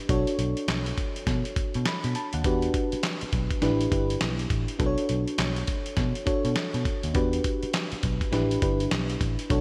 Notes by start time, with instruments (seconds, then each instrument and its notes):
Already playing: fm electric piano D4 E4 G4 B4
0.09 picked electric bass B1, fm electric piano D4 F#4 A4 C#5, kick, closed hi-hat
0.27 closed hi-hat
0.39 picked electric bass B1, closed hi-hat
0.57 closed hi-hat
0.68 picked electric bass B1, snare, clap, closed hi-hat
0.86 closed hi-hat
0.98 kick, closed hi-hat
1.16 closed hi-hat
1.27 picked electric bass B2, kick, snare, closed hi-hat
1.45 closed hi-hat
1.56 muted picked electric bass stroke, kick, closed hi-hat
1.74 picked electric bass B2, closed hi-hat
1.85 fm electric piano B5, snare, clap, closed hi-hat
2.04 picked electric bass B2, fm electric piano B5, closed hi-hat
2.15 fm electric piano A5, closed hi-hat
2.33 picked electric bass D#2, fm electric piano F#5, closed hi-hat
2.44 picked electric bass E2, fm electric piano D4 F#4 G4 B4, kick, closed hi-hat
2.62 closed hi-hat
2.74 kick, closed hi-hat
2.92 muted picked electric bass stroke, closed hi-hat
3.03 snare, clap, closed hi-hat
3.21 muted picked electric bass stroke, closed hi-hat
3.33 picked electric bass B1, kick, closed hi-hat
3.51 kick, closed hi-hat
3.62 picked electric bass A1, fm electric piano D4 E4 G4 B4, snare, closed hi-hat
3.81 closed hi-hat
3.92 picked electric bass G1, fm electric piano D4 E4 G4 B4, kick, closed hi-hat
4.10 closed hi-hat
4.21 picked electric bass B1, snare, clap, closed hi-hat
4.39 closed hi-hat
4.50 picked electric bass A1, kick, closed hi-hat
4.68 closed hi-hat
4.79 picked electric bass B1, fm electric piano D4 F#4 A4 B4, kick, closed hi-hat
4.86 fm electric piano C#5
4.98 closed hi-hat
5.09 picked electric bass B1, closed hi-hat
5.28 closed hi-hat
5.38 picked electric bass B1, snare, clap, closed hi-hat
5.56 closed hi-hat
5.67 kick, closed hi-hat
5.86 closed hi-hat
5.97 picked electric bass B2, kick, snare, closed hi-hat
6.15 closed hi-hat
6.26 fm electric piano D4 F#4 A4 C#5, muted picked electric bass stroke, kick, closed hi-hat
6.45 picked electric bass B2, closed hi-hat
6.56 snare, clap, closed hi-hat
6.74 picked electric bass B2, closed hi-hat
6.85 kick, closed hi-hat
7.03 picked electric bass D#2, closed hi-hat
7.14 picked electric bass E2, fm electric piano D4 F#4 G4 B4, kick, closed hi-hat
7.33 closed hi-hat
7.44 kick, closed hi-hat
7.63 muted picked electric bass stroke, closed hi-hat
7.73 snare, clap, closed hi-hat
7.92 muted picked electric bass stroke, closed hi-hat
8.03 picked electric bass B1, kick, closed hi-hat
8.21 kick, closed hi-hat
8.32 picked electric bass A1, fm electric piano D4 E4 G4 B4, snare, closed hi-hat
8.51 closed hi-hat
8.62 picked electric bass G1, fm electric piano D4 E4 G4 B4, kick, closed hi-hat
8.80 closed hi-hat
8.91 picked electric bass B1, snare, clap, closed hi-hat
9.10 closed hi-hat
9.21 picked electric bass A1, kick, closed hi-hat
9.39 closed hi-hat
9.50 picked electric bass B1, fm electric piano D4 F#4 A4 C#5, kick, closed hi-hat